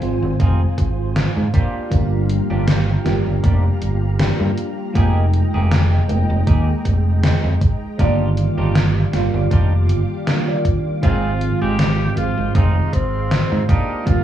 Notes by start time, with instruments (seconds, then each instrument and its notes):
Already playing: fm electric piano C4 F4, string machine F4 C5 G#5
0.00 fingered electric bass G#1, fm electric piano D#3 F3 G#3 C4 F4, muted clean electric guitar stroke, closed hi-hat
0.22 fingered electric bass G#1
0.39 fingered electric bass F1, clean electric guitar C4 D#4 F4 G#4, kick, closed hi-hat
0.78 fingered electric bass G#1, muted clean electric guitar stroke, kick, closed hi-hat
1.16 snare, closed hi-hat
1.36 fingered electric bass G#2, muted clean electric guitar stroke
1.53 clean electric guitar A#3 D4 F4 G4, string machine G4 F5 A#5, kick, closed hi-hat
1.90 fingered electric bass G1, fm electric piano F3 G3 A#3 D4 F4, kick, closed hi-hat
2.30 closed hi-hat
2.50 fingered electric bass G1, clean electric guitar A#3 D4 F4 G4
2.68 snare, closed hi-hat
3.04 fingered electric bass G1, fm electric piano F3 G3 A#3 D4 G4, muted clean electric guitar stroke, snare, closed hi-hat
3.26 fingered electric bass G1
3.43 fingered electric bass F1, clean electric guitar A#3 D4 F4 G4, kick, closed hi-hat
3.81 fingered electric bass G1, muted clean electric guitar stroke, closed hi-hat
4.19 fm electric piano F3 G3 A#3 D4 G4, snare, closed hi-hat
4.39 fingered electric bass G2, fm electric piano F3 G3 A#3 D4 F4, muted clean electric guitar stroke
4.57 muted clean electric guitar stroke, closed hi-hat
4.94 fingered electric bass F1, fm electric piano F3 G#3 A#3 D#4 G5, string machine G#3 D#5 G5, clean electric guitar A#3 D#4 G4 G#4, kick, closed hi-hat
5.33 closed hi-hat
5.54 fingered electric bass F1, clean electric guitar A#3 D#4 G4 G#4
5.71 snare, closed hi-hat
6.08 fingered electric bass F1, fm electric piano F3 G#3 A#3 D#4 G5, muted clean electric guitar stroke, closed hi-hat
6.30 fingered electric bass F1
6.47 fingered electric bass D#2, clean electric guitar A#3 D#4 G4 G#4, kick, closed hi-hat
6.85 fingered electric bass F1, muted clean electric guitar stroke, kick, closed hi-hat
7.23 snare, closed hi-hat
7.44 fingered electric bass F2, muted clean electric guitar stroke
7.61 muted clean electric guitar stroke, kick, closed hi-hat
7.98 fingered electric bass G1, fm electric piano D#3 G3 A#3 F4 D5, clean electric guitar D4 D#4 F4 G4, string machine G4 F5 D6, kick, closed hi-hat
8.37 closed hi-hat
8.58 fingered electric bass G1, clean electric guitar D4 D#4 F4 G4
8.75 snare, closed hi-hat
9.12 fingered electric bass G1, fm electric piano D#3 G3 A#3 F4 D5, muted clean electric guitar stroke, snare, closed hi-hat
9.34 fingered electric bass G1
9.51 fingered electric bass F1, clean electric guitar D4 D#4 F4 G4, kick, closed hi-hat
9.89 fingered electric bass G1, muted clean electric guitar stroke, closed hi-hat
10.27 fm electric piano D#3 G3 A#3 D4 F4, snare, closed hi-hat
10.47 fm electric piano D#3 G3 A#3 F4 D5, muted clean electric guitar stroke
10.65 muted clean electric guitar stroke, kick, closed hi-hat
11.01 fingered electric bass G#1, fm electric piano D#3 F3 G#3 C4 F4, string machine G#3 F5 C6, clean electric guitar C4 D#4 F4 G#4, tenor saxophone F4, kick, closed hi-hat
11.41 closed hi-hat
11.61 fingered electric bass G#1, clean electric guitar C4 D#4 F4 G#4, tenor saxophone G4
11.79 snare, closed hi-hat
12.15 fingered electric bass G#1, fm electric piano D#3 F3 G#3 C4 F4, tenor saxophone F4, muted clean electric guitar stroke, closed hi-hat
12.37 fingered electric bass G#1
12.54 fingered electric bass F1, clean electric guitar C4 D#4 F4 G#4, tenor saxophone D#4, kick, closed hi-hat
12.93 fingered electric bass G#1, tenor saxophone C4, muted clean electric guitar stroke, kick, closed hi-hat
13.31 snare, closed hi-hat
13.51 fingered electric bass G#2, muted clean electric guitar stroke
13.69 clean electric guitar A#3 D4 F4 G4, tenor saxophone D#4, string machine G4 A#5, kick, closed hi-hat
14.05 fingered electric bass G1, fm electric piano F3 G3 A#3 D4 F4, tenor saxophone F4, kick, closed hi-hat